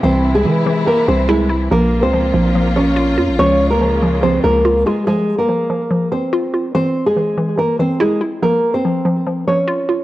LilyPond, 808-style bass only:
\new Staff \with { instrumentName = "808-style bass" } { \clef bass \time 4/4 \key f \minor \tempo 4 = 143 c,4 e8 r4 c,4. | bes,,8. des,8. bes,,2 f,16 bes,,16 | des,2~ des,8 des,4 r8 | r1 |
r1 | r1 | }